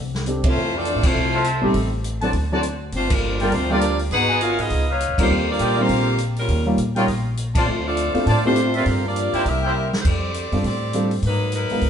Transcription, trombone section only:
Already playing: C3 D3 A3
0.45 E3 A3 C4
0.75 E3 A3 D4
1.04 F3 A3 C4
1.62 C3 D#3 A3
2.93 C4
3.11 D3 F3 A#3
3.53 C4
3.71 F3 A#3 D4
4.13 B3 D#4 F#4
4.41 F4
4.59 G#3 B3 D#4
5.19 D3 G3 C4
5.48 G3 A#3 D4
5.78 D3 G3 C4
6.38 C#3 G3 A#3
7.55 F3 A3 C4
7.85 F3 A3 D4
8.27 F3 A3 D4
8.44 F3 A3 C4
8.75 D3 F3 C4
9.05 F3 A#3 D4
9.46 G3 A#3 E4

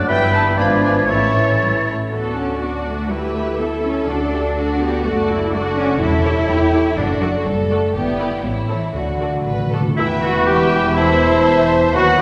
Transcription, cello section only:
0.09 G2
0.60 G#2
1.11 A2
1.36 E3
1.62 G3
1.86 A3
2.12 B3
2.36 C#4
2.62 B3
2.86 A3
3.10 G3
3.34 A3
3.59 B3
3.83 C#4
4.08 D4
4.81 B3
5.05 A3
5.53 A3
5.77 C#4
6.01 E4
6.98 D4
7.22 F#3
7.46 G3
7.71 A3
7.95 B3
8.44 G3
8.69 E3
8.95 D3
9.99 E2
11.95 D#2

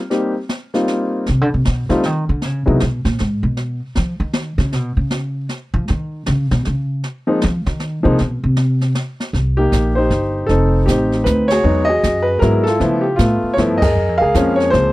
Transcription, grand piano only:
0.10 G3 A#3 C4 D#4 G4
0.74 G3 A#3 C4 D#4 F4
1.89 G3 A3 C4 D#4 F4
2.66 F#3 G#3 B3 D#4 E4
7.27 F3 G#3 A#3 C4 D#4
8.03 F3 G#3 A#3 C4 D#4
9.57 A#3 D#4 G4
9.95 D#4 G4 C5
10.47 C4 D#4 A4
10.86 C4 D#4 G4
11.24 B4
11.48 F#4 G#4 C#5
11.64 F#3 G#3 B3 D#4
11.85 D#5
11.89 F#4 G#4
12.22 B4
12.39 F#3 G#3 B3 E4 A#4
12.64 A4
12.68 E4 F4
12.80 F3 A3 B3 E4
13.01 G4
13.16 F4
13.20 A3 B3
13.54 C#5
13.58 F3 A3 B3 E4
13.78 D#5
13.82 G#4 A#4
14.18 G#4 A#4 F5
14.35 F3 G#3 A#3 C#4
14.56 C#5
14.70 F3 G#3 A#3 C5
14.74 C4

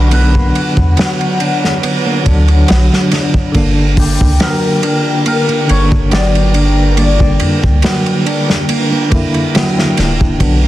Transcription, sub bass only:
Already playing: B1
0.78 E2
2.27 D2
2.70 B1
3.55 G1
4.21 C#2
5.70 G1
7.64 C#2
9.99 D1
10.41 B1

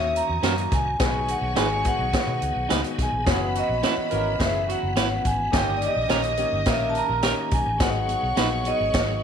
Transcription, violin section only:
Already playing: C#5 D#6
1.00 C#5 C#6
3.26 B4 B5
5.53 D#5 D#6
7.80 C#5 C#6

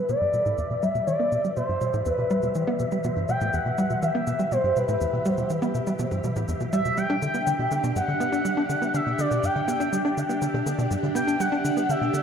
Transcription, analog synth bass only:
0.09 B2
0.21 G2
0.33 B2
0.46 A2
0.58 E2
0.70 B2
0.83 G3
0.95 B2
1.07 E3
1.20 B3
1.32 B2
1.44 G3
1.57 B2
1.69 G2
1.81 B2
1.94 A2
2.06 E2
2.18 B2
2.30 G3
2.43 B2
2.55 E3
2.67 B3
2.80 B2
2.92 G3
3.04 B2
3.16 G2
3.29 B2
3.41 A2
3.54 E2
3.66 B2
3.78 G3
3.90 B2
4.02 E3
4.15 B3
4.27 B2
4.39 G3
4.51 B2
4.64 G2
4.76 B2
4.88 A2
5.01 E2
5.13 B2
5.26 G3
5.38 B2
5.50 E3
5.62 B3
5.74 B2
5.87 G3
5.99 B2
6.11 G2
6.24 B2
6.36 A2
6.48 E2
6.60 B2
6.73 G3
6.85 B2
6.97 G3
7.10 D4
7.22 D3
7.34 B3
7.47 D3
7.59 B2
7.71 D3
7.84 B2
7.96 G2
8.08 D3
8.20 B3
8.32 D4
8.45 G3
8.57 D4
8.69 D3
8.82 B3
8.94 D3
9.06 B2
9.19 D3
9.31 B2
9.43 G2
9.56 D3
9.68 B3
9.80 D4
9.92 G3
10.05 D4
10.17 D3
10.29 B3
10.42 D3
10.54 B2
10.66 D3
10.78 B2
10.91 G2
11.03 D3
11.15 B3
11.27 D4
11.40 G3
11.52 D4
11.64 D3
11.77 B3
11.89 D3
12.01 B2
12.13 D3

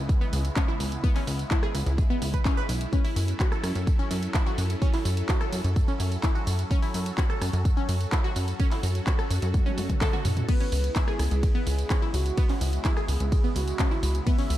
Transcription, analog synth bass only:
Already playing: C#2
0.33 C#2
0.80 C#2
1.27 C#2
1.75 C#2
1.86 C#2
2.22 C#2
2.69 B1
3.16 F#2
3.64 F#2
3.75 F#2
4.11 F#2
4.58 F#2
5.05 F#2
5.53 F#2
5.64 F#2
6.00 F#2
6.47 F#2
6.94 F#2
7.42 F#2
7.53 F#2
7.89 F#2
8.36 F#2
8.83 F#2
9.31 F#2
9.42 F#2
9.78 F#2
10.25 F#2
10.72 C#2
11.19 C#2
11.31 C#2
11.67 C#2
12.14 C#2
12.61 C#2
13.08 C#2
13.20 C#2
13.56 C#2
14.03 C#2
14.50 C#2

